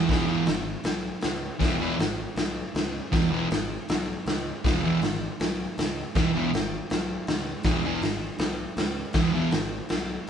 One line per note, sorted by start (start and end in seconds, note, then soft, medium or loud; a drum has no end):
0.09 0.35 E1 medium
0.09 0.25 E2 medium
0.09 0.25 B2 medium
0.09 0.25 E3 medium
0.09 kick loud
0.09 snare loud
0.09 open hi-hat medium
0.26 0.42 E2 medium
0.26 0.43 B2 loud
0.26 0.44 E3 loud
0.46 0.74 G#1 medium
0.46 snare loud
0.46 open hi-hat medium
0.84 1.10 B1 medium
0.84 snare loud
0.84 open hi-hat medium
1.21 1.50 C#2 medium
1.21 snare loud
1.21 open hi-hat medium
1.59 1.87 E1 medium
1.59 1.75 E2 medium
1.59 1.76 B2 medium
1.59 1.76 E3 medium
1.59 kick loud
1.59 snare loud
1.59 open hi-hat medium
1.80 1.95 E2 medium
1.80 1.95 B2 medium
1.80 1.96 E3 medium
1.99 2.25 G#1 medium
1.99 snare loud
1.99 open hi-hat medium
2.36 2.62 B1 medium
2.36 snare loud
2.36 open hi-hat medium
2.74 3.00 C#2 medium
2.74 snare loud
2.74 open hi-hat soft
3.12 3.39 E1 medium
3.12 3.27 E2 medium
3.12 3.28 B2 medium
3.12 3.28 E3 loud
3.12 kick loud
3.12 snare loud
3.12 open hi-hat medium
3.31 3.46 E2 medium
3.31 3.47 B2 loud
3.31 3.47 E3 loud
3.51 3.77 G#1 medium
3.51 snare loud
3.51 open hi-hat medium
3.89 4.15 B1 medium
3.89 snare loud
3.89 open hi-hat medium
4.26 4.52 C#2 medium
4.26 snare loud
4.26 open hi-hat medium
4.64 4.90 E1 medium
4.64 4.79 E2 medium
4.64 4.80 B2 medium
4.64 4.80 E3 medium
4.64 kick loud
4.64 snare loud
4.64 open hi-hat medium
4.83 4.98 E2 medium
4.83 4.99 B2 medium
4.83 4.99 E3 loud
5.01 5.27 G#1 medium
5.01 snare loud
5.01 open hi-hat medium
5.40 5.66 B1 medium
5.40 snare loud
5.40 open hi-hat medium
5.78 6.03 C#2 medium
5.78 snare loud
5.78 open hi-hat medium
6.15 6.41 E1 medium
6.15 6.30 E2 medium
6.15 6.31 B2 medium
6.15 6.31 E3 medium
6.15 kick loud
6.15 snare loud
6.15 open hi-hat soft
6.34 6.49 E2 medium
6.34 6.50 B2 medium
6.34 6.50 E3 loud
6.54 6.79 G#1 medium
6.54 snare loud
6.54 open hi-hat medium
6.90 7.17 B1 medium
6.90 snare loud
6.90 open hi-hat medium
7.27 7.54 C#2 medium
7.27 snare loud
7.27 open hi-hat medium
7.63 7.91 E1 medium
7.63 7.80 E2 medium
7.63 7.81 B2 medium
7.63 7.81 E3 medium
7.63 kick loud
7.63 snare loud
7.63 open hi-hat medium
7.85 7.99 E2 medium
7.85 8.00 B2 loud
7.85 8.00 E3 loud
8.02 8.28 G#1 medium
8.02 snare loud
8.02 open hi-hat medium
8.38 8.65 B1 medium
8.38 snare loud
8.38 open hi-hat medium
8.77 9.03 C#2 medium
8.77 snare loud
8.77 open hi-hat medium
9.13 9.41 E1 medium
9.13 9.30 E2 medium
9.13 9.31 B2 medium
9.13 9.31 E3 loud
9.13 kick loud
9.13 snare loud
9.13 open hi-hat medium
9.33 9.49 E2 medium
9.33 9.50 B2 loud
9.33 9.50 E3 loud
9.51 9.79 G#1 medium
9.51 snare loud
9.51 open hi-hat medium
9.89 10.17 B1 medium
9.89 snare loud
9.89 open hi-hat medium